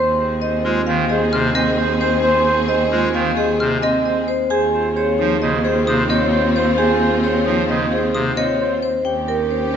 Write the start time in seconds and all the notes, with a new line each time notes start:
Already playing: D#2 C4 G#4 C5 C6
0.19 C5
0.41 C5 D#5
0.64 G#3 F4 C5
0.87 D#3 C5 F5
1.09 G#4 C5 D#5
1.33 C3 C5 F6
1.55 C4 C5 D#5
1.78 C5 D#5
2.00 C5
2.23 C5 C6
2.46 C5
2.68 C5 D#5
2.91 G#3 F4 C5
3.14 D#3 C5 F5
3.37 G#4 C5 D#5
3.60 C3 C5 F6
3.82 C4 C5 D#5
4.06 C5 D#5
4.28 C5
4.50 D#2 C4 F4 G#4 C5 G#5
4.73 C5
4.96 G#4 C5 C#5
5.18 F3 D#4 C5
5.41 C#3 C5 D#5
5.64 G#4 C5
5.87 C3 C5 D#6
6.09 C4 C5 C#5 D#5
6.32 C5
6.56 C5
6.78 G#4 C5 G#5
7.01 C5
7.23 G#4 C5 C#5
7.46 F3 D#4 C5
7.69 C#3 C5 D#5
7.92 G#4 C5
8.14 C3 C5 D#6
8.37 C4 C5 C#5 D#5
8.60 C5
8.82 C5
9.04 D#2 C#4 G4 G5
9.28 A#4
9.51 C5